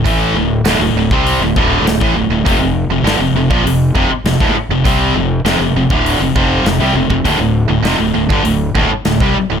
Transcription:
<<
  \new Staff \with { instrumentName = "Distorted electric guitar" } { \clef bass \time 4/4 \key d \minor \tempo 4 = 100 <a, e a>8 <d, a,>8 <d, a,>16 <d, a,>16 <d, a,>16 <c g c'>8 <d, a,>16 <d, a, d>8 <d, a,>16 <a, e>16 <d, a,>16 <d, a,>16 | <f, c>16 <f, c>8 <f, c>16 <g, d>16 <f, c>16 <f, c>16 <bes, f>16 <f, c>8 <f, c>16 r16 <f, c>16 <d, a,>16 r16 <f, c>16 | <c g c'>8 <f, c>8 <f, c>16 <f, c>16 <f, c>16 <d, a, d>8 <f, c>16 <f, c f>8 <f, c>16 <c g>16 <f, c>16 <f, c>16 | <d, a,>16 <d, a,>8 <d, a,>16 <f, c>16 <d, a,>16 <d, a,>16 <g, d>16 <d, a,>8 <d, a,>16 r16 <d, a,>16 <c g>16 r16 <d, a,>16 | }
  \new Staff \with { instrumentName = "Distorted electric guitar" } { \clef bass \time 4/4 \key d \minor <a, e a>8 <d, a,>8 <d, a,>16 <d, a,>16 <d, a,>16 <c g c'>8 <d, a,>16 <d, a, d>8 <d, a,>16 <a, e>16 <d, a,>16 <d, a,>16 | <f, c>16 <f, c>8 <f, c>16 <g, d>16 <f, c>16 <f, c>16 <bes, f>16 <f, c>8 <f, c>16 r16 <f, c>16 <d, a,>16 r16 <f, c>16 | <c g c'>8 <f, c>8 <f, c>16 <f, c>16 <f, c>16 <d, a, d>8 <f, c>16 <f, c f>8 <f, c>16 <c g>16 <f, c>16 <f, c>16 | <d, a,>16 <d, a,>8 <d, a,>16 <f, c>16 <d, a,>16 <d, a,>16 <g, d>16 <d, a,>8 <d, a,>16 r16 <d, a,>16 <c g>16 r16 <d, a,>16 | }
  \new Staff \with { instrumentName = "Fingered electric bass" } { \clef bass \time 4/4 \key d \minor a,,8 d,,8 d,,16 d,,16 d,,16 c,8 d,,16 d,,8 d,,16 a,,16 d,,16 d,,16 | f,,16 f,,8 f,,16 g,,16 f,,16 f,,16 bes,,16 f,,8 f,,16 r16 f,,16 d,,16 r16 f,,16 | c,8 f,,8 f,,16 f,,16 f,,16 d,,8 f,,16 f,,8 f,,16 c,16 f,,16 f,,16 | d,,16 d,,8 d,,16 f,,16 d,,16 d,,16 g,,16 d,,8 d,,16 r16 d,,16 c,16 r16 d,,16 | }
  \new DrumStaff \with { instrumentName = "Drums" } \drummode { \time 4/4 <hho bd>4 <hho sn>8. bd16 hho8 bd8 <hho sn>16 bd8. | <hho bd>4 <hho sn>8. bd16 hho8 bd8 <hho sn>16 bd8. | <hho bd>4 <hho sn>8. bd16 hho8 bd8 <hho sn>8 tommh16 bd16 | <hho bd>4 <hho sn>8. bd16 hho8 bd8 <hho sn>16 bd8. | }
>>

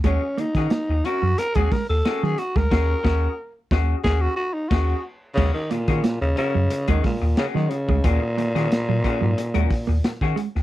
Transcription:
<<
  \new Staff \with { instrumentName = "Clean electric guitar" } { \time 4/4 \key ees \minor \tempo 4 = 90 <des' ges' aes'>16 r8 <des' ges' aes'>16 r8 <des' ges' bes'>16 r8 <des' ges' aes'>16 r8 <des' ges' aes'>8 r8 | <des' ges' aes'>8 <des' ges' aes'>8 r8 <des' ges' aes'>8 <des' ges' aes'>8 r8 <des' ges' aes'>8 r8 | <des' ges' aes'>16 r8 <des' ges' aes'>16 r8 <des' ges' bes'>16 r8 <des' ges' aes'>16 r8 <des' ges' aes'>8 r8 | <des' ges' aes'>16 r8 <des' ges' aes'>16 r8 <des' ges' aes'>16 r8 <des' ges' bes'>16 r8. <des' ges' aes'>16 r8 | }
  \new Staff \with { instrumentName = "Tenor saxophone" } { \time 4/4 \key ees \minor des'8 ees'4 ges'8 bes'16 aes'16 bes'16 a'8 aes'16 ges'16 bes'16~ | bes'4~ bes'16 r8. aes'16 ges'16 ges'16 ees'16 ges'8 r8 | des16 ees16 bes,8. des16 des8. ees16 bes,8 des16 ees16 des8 | bes,2.~ bes,8 r8 | }
  \new Staff \with { instrumentName = "Clean electric guitar" } { \clef bass \time 4/4 \key ees \minor aes16 r16 bes16 r16 bes16 r8 ges16 r16 aes16 aes16 r8 ges16 r16 aes16 | r1 | aes16 r16 bes16 r16 bes16 r8 ges16 r16 aes16 aes16 r8 ges16 r16 aes16 | r8 bes16 bes16 r16 ges16 r16 ges16 r16 aes16 r16 bes16 r8 aes16 r16 | }
  \new Staff \with { instrumentName = "Analog synth bass" } { \clef bass \time 4/4 \key ees \minor ees,16 r16 ees16 ees16 r16 ees,16 r16 ges,16 r16 ees,16 r16 ees,16 r16 ees16 r16 d,16 | ees,8 ees,8 r8 ees,8 ees,8 r8 ees,8 r8 | ees,16 r16 ees16 ees16 r16 ees,16 r16 ges,16 r16 ees,16 r16 ees,16 r16 ees16 r16 d,16 | ees,16 r16 ees16 ees16 r16 bes,16 r16 aes,16 r16 ees,16 r16 ees,16 r16 ees16 r16 d,16 | }
  \new DrumStaff \with { instrumentName = "Drums" } \drummode { \time 4/4 <hh bd>8 hh16 <hh bd sn>16 <hh sn>8 hh8 hh16 <hh bd>16 <hho bd sn>8 <hh sn>16 sn16 hh16 <bd sn>16 | <cymc bd sn>8 <bd sn>8 r8 <bd sn>8 <bd sn>4 <cymc bd sn>4 | <cymc bd>8 hh16 <hh bd sn>16 <hh sn>8 hh8 hh16 <hh bd>16 <hho bd sn>8 <hh sn>16 sn16 hh16 bd16 | <hh bd>8 hh16 <hh sn>16 <hh sn>8 <hh bd>8 hh16 hh16 <hho bd sn>8 <hh sn>16 <bd sn>16 hh16 sn16 | }
>>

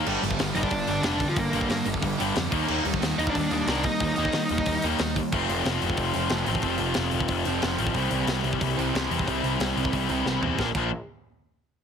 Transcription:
<<
  \new Staff \with { instrumentName = "Lead electric guitar" } { \time 4/4 \key f \mixolydian \tempo 4 = 182 r4. <ees' ees''>16 <d' d''>4~ <d' d''>16 <d' d''>8. <f f'>16 | <bes bes'>4. r2 r8 | r4. <ees' ees''>16 <d' d''>4~ <d' d''>16 <d' d''>8 <ees' ees''>8~ | <ees' ees''>2~ <ees' ees''>8 r4. |
r1 | r1 | r1 | r1 |
r1 | }
  \new Staff \with { instrumentName = "Distorted electric guitar" } { \clef bass \time 4/4 \key f \mixolydian <g, d g>8 <g, d>8 <g, d>8 <g, d g>8 <g, d>8 <g, d>8 <g, d g>8 <g, d>8 | <g, d>8 <g, d g>8 <g, d>8 <g, d>8 <g, d>8 <g, d g>8 <g, d>8 <ees g bes>8 | <ees g bes>8 <ees g>8 <ees g>8 <ees g bes>8 <ees g>8 <ees g>8 <ees g bes>8 <ees g>8 | <ees g>8 <ees g bes>8 <ees g>8 <ees g>8 <ees g>8 <ees g bes>8 <ees g>8 <ees g>8 |
<f a c' f'>2.~ <f a c' f'>8 <f a c' f'>8 | <f a c' f'>2.~ <f a c' f'>8 <f a c' f'>8 | <c e g c' e'>2.~ <c e g c' e'>8 <c e g c' e'>8 | <c e g c' e'>2.~ <c e g c' e'>8 <c e g c' e'>8 |
<bes, f bes d'>8 <bes, f bes d'>8 r2. | }
  \new Staff \with { instrumentName = "Distorted electric guitar" } { \clef bass \time 4/4 \key f \mixolydian <g, d g>2~ <g, d g>8 <g, d g>8 <g, d g>4 | <g, d g>2~ <g, d g>8 <g, d g>8 <g, d g>8 <ees bes ees'>8~ | <ees bes ees'>2 <ees bes ees'>8 <ees bes ees'>4 <ees bes ees'>8~ | <ees bes ees'>2 <ees bes ees'>8 <ees bes ees'>4 r8 |
r1 | r1 | r1 | r1 |
r1 | }
  \new Staff \with { instrumentName = "Distorted electric guitar" } { \clef bass \time 4/4 \key f \mixolydian <g, d g>8 <g, d>8 <g, d>8 <g, d g>8 <g, d>8 <g, d>8 <g, d g>8 <g, d>8 | <g, d>8 <g, d g>8 <g, d>8 <g, d>8 <g, d>8 <g, d g>8 <g, d>8 <ees bes ees'>8 | <ees bes ees'>8 <ees bes>8 <ees bes>8 <ees bes ees'>8 <ees bes>8 <ees bes>8 <ees bes ees'>8 <ees bes>8 | <ees bes>8 <ees bes ees'>8 <ees bes>8 <ees bes>8 <ees bes>8 <ees bes ees'>8 <ees bes>8 <ees bes>8 |
<f, c f>2~ <f, c f>8 <f, c f>8 <f, c f>4 | <f, c f>2~ <f, c f>8 <f, c f>8 <f, c f>4 | <c g c'>2~ <c g c'>8 <c g c'>8 <c g c'>4 | <c g c'>2~ <c g c'>8 <c g c'>8 <c g c'>4 |
<bes, f bes>8 <bes, f bes>8 r2. | }
  \new Staff \with { instrumentName = "Picked electric bass" } { \clef bass \time 4/4 \key f \mixolydian g,,8 g,,8 g,,8 g,,8 g,,8 g,,8 f,,4 | g,,8 g,,8 g,8 g,,8 g,,8 g,,8 f,8 ees,8 | ees,8 ees,8 ees,8 ees,8 ees,8 ees,8 c,4 | ees,8 ees,8 ees8 ees,8 ees,8 ees,8 ees,4 |
f,,8 f,,8 f,,8 f,,8 f,,8 f,,8 f,,8 a,,8 | f,,8 f,,8 f,,8 f,,8 f,,8 f,,8 f,,8 a,,8 | c,8 c,8 c,8 c,8 c,8 c,8 c,8 e,8 | c,8 c,8 c,8 c,8 c,8 c,8 c,8 e,8 |
bes,,8 bes,,8 r2. | }
  \new DrumStaff \with { instrumentName = "Drums" } \drummode { \time 4/4 cymc8 hho16 bd16 <hho sn>8 hho16 bd16 <hho bd>8 hho8 <hho sn>8 <hho bd>8 | <hho bd>8 hho16 bd16 <hho sn>8 hho16 bd16 <hho bd>8 hho8 <hho sn>8 <hho bd>8 | cymc8 hho16 bd16 <hho sn>8 hho16 bd16 <hho bd>8 hho8 <hho sn>8 <hho bd>8 | <hho bd>8 hho16 bd16 <hho sn>8 hho16 bd16 <hho bd>8 hho8 <hho sn>8 <hho bd>8 |
<cymc bd>8 hho8 <hho sn>8 hho16 bd16 <hho bd>8 hho8 <hho sn>8 hho16 bd16 | <hho bd>8 hho8 <hho sn>8 hho16 bd16 <hho bd>8 hho8 <hho sn>8 hho16 bd16 | <hho bd>8 hho8 <hho sn>8 hho16 bd16 <hho bd>8 hho8 <hho sn>8 hho16 bd16 | <hho bd>8 hho8 <hho sn>8 hho16 bd16 <hho bd>8 hho8 sn8 tomfh8 |
<bd sn>8 <cymc bd>8 r4 r4 r4 | }
>>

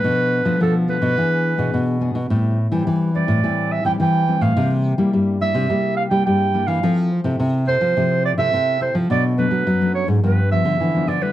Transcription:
<<
  \new Staff \with { instrumentName = "Clarinet" } { \time 4/4 \key a \minor \tempo 4 = 106 b'4 a'8 b'2 r8 | r4. d''4 e''16 g''16 g''8. f''16~ | f''16 r4 r16 e''4 f''16 g''16 g''8. f''16~ | f''16 r4 r16 c''4 d''16 e''8. c''8 |
d''8 b'4 cis''8 b'8 e''4 d''16 b'16 | }
  \new Staff \with { instrumentName = "Nylon-string guitar" } { \time 4/4 \key a \minor << { <f a d'>8. <f a d'>8. <f a d'>8 <b d' gis'>8. <b d' gis'>8. <b d' gis'>16 r16 | <g c' e'>8 r16 <g c' e'>8. <g c' e'>8 <g c' e'>8. <g c' e'>8. <g c' e'>8 | <g bes e'>8. <g bes e'>8. <g bes e'>8 <g bes e'>8. <g bes e'>8. <g bes e'>8 | <c' e' a'>8 r16 <c' e' a'>8. <c' e' a'>16 r16 <c' e' a'>8. <c' e' a'>8. <c' e' a'>8 |
<fis a d'>8 <fis a d'>8 r16 <fis a d'>8. <f b d'>16 r16 <f b d'>8. <f b d'>8 <g a e'>16 | } \\ { b,4 b,4 e4 b,4 | a,4 e4 a,4 e4 | c4 g,4 c4 g,4 | f4 c4 f4 c4 |
b,4 fis,4 g,4 d4 | } >> }
  \new Staff \with { instrumentName = "Nylon-string guitar" } { \clef bass \time 4/4 \key a \minor b,8. f16 f8. b,16 e8. b,16 b,8. b,16 | a,8. e16 e8. a,16 e8. e16 e8. a,16 | c8. g16 g8. c16 g8. g16 g8. e16 | f8. c16 c8. f16 c8. c16 c8. f16 |
b,8. fis16 fis8. gis,16 g,8. d16 e8 d8 | }
>>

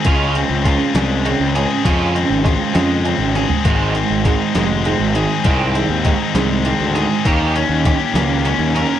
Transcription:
<<
  \new Staff \with { instrumentName = "Distorted electric guitar" } { \time 6/8 \key aes \major \tempo 4. = 67 des8 c'8 f'8 aes8 c'8 aes'8 | des8 c'8 f'8 aes8 c'8 aes'8 | aes,8 c'8 ees'8 aes8 c'8 aes'8 | aes,8 c'8 ees'8 aes8 c'8 aes'8 |
ees8 des'8 g'8 bes8 des'8 bes'8 | }
  \new Staff \with { instrumentName = "Overdriven electric guitar" } { \clef bass \time 6/8 \key aes \major <aes des' f'>8 <aes des'>8 <aes des'>8 <aes des'>8 <aes des'>8 <aes des'>8 | <aes des' f'>8 <aes des'>8 <aes des'>8 <aes des'>8 <aes des'>8 <aes des'>8 | <ees aes c'>8 <ees aes>8 <ees aes>8 <ees aes>8 <ees aes>8 <ees aes>8 | <ees aes c'>8 <ees aes>8 <ees aes>8 <ees aes>8 <ees aes>8 <ees aes>8 |
<bes des' g'>8 <bes des'>8 <bes des'>8 <bes des'>8 <bes des'>8 <bes des'>8 | }
  \new Staff \with { instrumentName = "Picked electric bass" } { \clef bass \time 6/8 \key aes \major des,8. des,8 r16 c,8. des,8 r16 | f,8. aes,,8 r16 f,8. aes,,8 r16 | aes,,8. aes,,8 r16 f,,8. aes,,8 r16 | c,8. ees,8 r16 c,8. d,8 r16 |
ees,8. ees,8 r16 des,8. ees,8 r16 | }
  \new DrumStaff \with { instrumentName = "Drums" } \drummode { \time 6/8 <hh bd>8 hh8 <hh bd>8 <hh sn>8 hh8 hh8 | <hh bd>8 hh8 <hh bd>8 <hh sn>8 hh8 <hh tommh>16 tomfh16 | <hh bd>8 hh8 <hh bd>8 <hh sn>8 hh8 hh8 | <hh bd>8 hh8 <hh bd>8 <hh sn>8 hh8 hh8 |
<hh bd>8 hh8 <hh bd>8 <hh sn>8 hh8 hh8 | }
>>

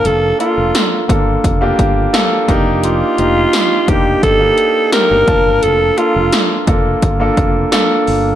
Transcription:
<<
  \new Staff \with { instrumentName = "Alto saxophone" } { \time 4/4 \key bes \major \tempo 4 = 86 a'8 f'4 r2 r8 | f'4. g'8 a'4 bes'4 | a'8 f'4 r2 r8 | }
  \new Staff \with { instrumentName = "Grand piano" } { \time 4/4 \key bes \major <bes d' f' a''>16 r16 <bes d' f' a'>8. r16 <bes d' f' a'>8. <bes d' f' g'>8. <bes d' f' a'>8 <bes d' ees' g'>8~ | <bes d' ees' g'>16 r16 <bes d' ees' g'>8. r16 <bes d' ees' g'>8. <bes d' ees' g'>8. <bes d' ees' g'>8 <bes d' f' a''>8~ | <bes d' f' a''>16 r16 <bes d' f' a'>8. r16 <bes d' f' a'>8. <bes d' f' a'>8. <bes d' f' a'>8. r16 | }
  \new Staff \with { instrumentName = "Fretless electric bass" } { \clef bass \time 4/4 \key bes \major f,,8 r16 f,,16 r8 g,,8 f,,8 g,,8 r8 f,,8~ | f,,8 f,,8 r8 f,,8 g,,8 r8. g,,16 f,,16 g,,16 | f,,8 r16 f,,16 r8 f,,8 g,,8 f,,8 r8 g,,8 | }
  \new DrumStaff \with { instrumentName = "Drums" } \drummode { \time 4/4 hh8 hh8 <hh sn tamb>8 <hh bd>8 <hh bd>8 <hh bd>8 <hh sn tamb>8 <hh bd>8 | hh8 hh8 <hh sn tamb>8 <hh bd>8 <hh bd>8 hh8 <hh sn tamb>8 <hh bd>8 | hh8 hh8 <hh sn tamb>8 <hh bd>8 <hh bd>8 <hh bd>8 <hh sn tamb>8 hho8 | }
>>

